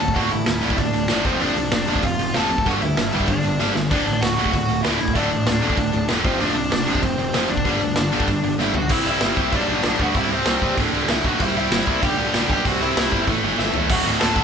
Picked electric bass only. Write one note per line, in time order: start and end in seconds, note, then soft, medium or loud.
0.01 0.13 D1 medium
0.16 0.28 D1 medium
0.32 0.44 A1 medium
0.47 0.59 D1 medium
0.64 0.76 D1 medium
0.78 0.91 D1 loud
0.94 1.06 D1 medium
1.10 1.22 F#1 medium
1.25 1.37 F1 medium
1.41 1.53 F1 medium
1.56 1.69 C2 medium
1.72 1.84 F1 medium
1.88 2.00 F1 medium
2.03 2.16 F1 medium
2.19 2.31 F1 medium
2.35 2.47 F1 medium
2.51 2.63 F1 medium
2.66 2.78 G1 medium
2.82 2.94 D2 medium
2.98 3.10 G1 medium
3.14 3.26 G1 medium
3.28 3.40 G1 medium
3.44 3.56 G1 medium
3.59 3.72 G1 medium
3.75 3.91 G1 medium
3.91 4.03 D1 medium
4.07 4.19 A1 medium
4.22 4.34 D1 medium
4.38 4.50 D1 medium
4.53 4.65 D1 medium
4.69 4.81 D1 medium
4.84 4.96 D1 medium
5.01 5.13 D1 medium
5.15 5.27 D1 medium
5.32 5.44 A1 medium
5.47 5.59 D1 medium
5.63 5.75 D1 medium
5.77 5.90 D1 medium
5.94 6.06 D1 medium
6.10 6.22 E1 loud
6.24 6.37 F1 medium
6.41 6.53 F1 medium
6.56 6.68 C2 medium
6.72 6.84 F1 medium
6.88 7.00 F1 medium
7.03 7.15 F1 medium
7.19 7.31 F1 medium
7.34 7.46 F1 medium
7.49 7.62 F1 medium
7.66 7.78 G1 medium
7.81 7.93 D2 medium
7.97 8.09 G1 medium
8.13 8.25 G1 medium
8.28 8.40 G1 medium
8.43 8.55 G1 medium
8.58 8.71 G1 medium
8.73 8.86 B1 medium
8.90 9.00 C2 medium
9.06 9.16 C2 medium
9.21 9.31 G1 medium
9.37 9.53 C2 medium
9.53 9.62 B1 medium
9.69 9.79 B1 medium
9.84 9.94 B1 medium
10.00 10.09 D2 medium
10.15 10.25 C2 medium
10.29 10.40 C2 medium
10.46 10.56 C2 medium
10.62 10.72 C#2 medium
10.78 10.88 D1 medium
10.92 11.02 C2 medium
11.08 11.18 C2 medium
11.24 11.34 B1 medium
11.41 11.50 C2 medium
11.56 11.66 C2 medium
11.71 11.81 G1 medium
11.87 11.97 C2 medium
12.03 12.12 B1 medium
12.19 12.28 B1 medium
12.34 12.44 B1 medium
12.49 12.59 B1 medium
12.66 12.75 C2 medium
12.80 12.90 C2 medium
12.96 13.06 C2 medium
13.12 13.22 G1 medium
13.27 13.37 A1 medium
13.43 13.53 G1 medium
13.59 13.69 G1 medium
13.74 13.84 E2 medium
13.90 14.05 D1 medium
14.05 14.20 D1 medium
14.21 14.35 D1 loud
14.36 14.44 D1 medium